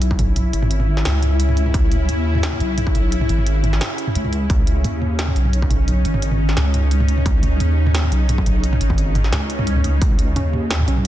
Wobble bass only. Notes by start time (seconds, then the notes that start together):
Already playing: B1
0.54 G#1
1.05 C#2
1.74 C#2
2.09 D#2
2.60 B1
3.29 G#1
4.16 C#2
4.50 C#2
4.85 D#2
5.36 B1
6.05 G#1
6.57 C#2
7.26 C#2
7.60 D#2
8.12 B1
8.81 G#1
9.32 C#2
9.84 C#2
10.02 C#2
10.36 D#2
10.88 B1